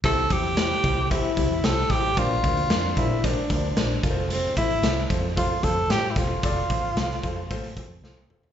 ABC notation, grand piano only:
X:1
M:4/4
L:1/8
Q:1/4=113
K:Cmix
V:1 name="Grand piano"
[EGc] [EGc] [EGc] [EGc] [EGc] [EGc] [EGc] [EGc] | [DBc] [DBc] [DBc] [DBc] [DBc] [DBc] [DBc] [FABc]- | [FABc] [FAc] [FAc] [FAc] [FAc] [FAc] [FAc] [FAc] | [FAd] [FAc] [FAc] [FAc] [FAc] [FAc] [FAc] [FAc] |]
V:2 name="Grand piano" clef=bass
C,3 z4 z | B,,3 z4 z | z8 | z8 |]